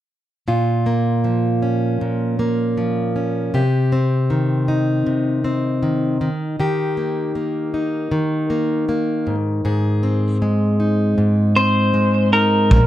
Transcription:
0.48 steel-string acoustic guitar A#2 F4
0.86 steel-string acoustic guitar A#3
1.24 steel-string acoustic guitar F3
1.62 steel-string acoustic guitar C#4
2.01 steel-string acoustic guitar A#2
2.39 steel-string acoustic guitar A#3
2.77 steel-string acoustic guitar F3
3.16 steel-string acoustic guitar C#4
3.54 steel-string acoustic guitar C3 G4
3.92 steel-string acoustic guitar C4
4.30 steel-string acoustic guitar D#3
4.68 steel-string acoustic guitar D#4
5.07 steel-string acoustic guitar C3
5.44 steel-string acoustic guitar C4
5.83 steel-string acoustic guitar D#3
6.21 steel-string acoustic guitar D#3
6.60 steel-string acoustic guitar D#3 G4
6.97 steel-string acoustic guitar A#3
7.35 steel-string acoustic guitar A#3
7.74 steel-string acoustic guitar D#4
8.11 steel-string acoustic guitar D#3
8.50 steel-string acoustic guitar A#3
8.89 steel-string acoustic guitar A#3
9.27 steel-string acoustic guitar G#2
9.65 steel-string acoustic guitar G#2 G#4
10.03 steel-string acoustic guitar C4
10.42 steel-string acoustic guitar G#3
10.80 steel-string acoustic guitar D#4
11.18 steel-string acoustic guitar G#2
11.56 steel-string acoustic guitar C4, electric slide guitar C5
11.94 steel-string acoustic guitar G#3
12.33 steel-string acoustic guitar D#4, electric slide guitar A#4
12.71 fingered electric bass A#1, steel-string acoustic guitar A#2, kick

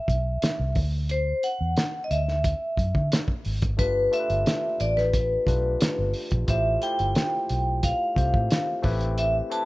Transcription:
Already playing: vibraphone E5
0.08 fingered electric bass B1, kick, closed hi-hat
0.42 muted fingered electric bass stroke, snare, closed hi-hat
0.60 fingered electric bass C2
0.75 fingered electric bass D2, kick, open hi-hat
1.09 vibraphone C5, closed hi-hat
1.43 vibraphone F#5, closed hi-hat
1.61 fingered electric bass E2
1.77 snare, closed hi-hat
2.04 vibraphone D#5
2.11 fingered electric bass D2, vibraphone E5, closed hi-hat
2.28 snare
2.44 kick, closed hi-hat
2.77 fingered electric bass F#2, kick, closed hi-hat
2.95 fingered electric bass D3, kick
3.12 snare, closed hi-hat
3.28 kick
3.45 fingered electric bass G#1, open hi-hat
3.62 kick, closed hi-hat
3.77 fingered electric bass G1, tine electric piano A3 D4 F4 G4 B4, vibraphone B4, kick, closed hi-hat
4.11 tine electric piano A3 D4 F4 G4 A4, vibraphone E5, closed hi-hat
4.20 tine electric piano B4
4.30 fingered electric bass G1, closed hi-hat
4.46 snare, closed hi-hat
4.80 fingered electric bass A1, vibraphone D5, closed hi-hat
4.97 vibraphone B4, snare
5.13 kick, closed hi-hat
5.46 fingered electric bass B1, tine electric piano A3 D4 F4 G4 B4, kick, closed hi-hat
5.81 muted fingered electric bass stroke, snare, closed hi-hat
5.98 fingered electric bass G1
6.14 open hi-hat
6.31 fingered electric bass A#1, kick, closed hi-hat
6.47 fingered electric bass A1, tine electric piano A3 E4 F4 G4 C5, vibraphone E5, kick, closed hi-hat
6.81 tine electric piano A3 E4 F4 G4 C5, vibraphone G5, closed hi-hat
6.99 fingered electric bass G1, closed hi-hat
7.15 snare, closed hi-hat
7.49 fingered electric bass B1, closed hi-hat
7.83 vibraphone F5, kick, closed hi-hat
8.15 fingered electric bass C2, tine electric piano A3 C4 F4 G4 C5, kick, closed hi-hat
8.34 fingered electric bass A2, kick
8.51 snare, closed hi-hat
8.82 fingered electric bass A1, tine electric piano A3 C4 E4 G4 B4, kick, open hi-hat
9.01 closed hi-hat
9.18 vibraphone E5, closed hi-hat
9.50 tine electric piano A3 C4 E4 G4 B4, vibraphone A5, closed hi-hat

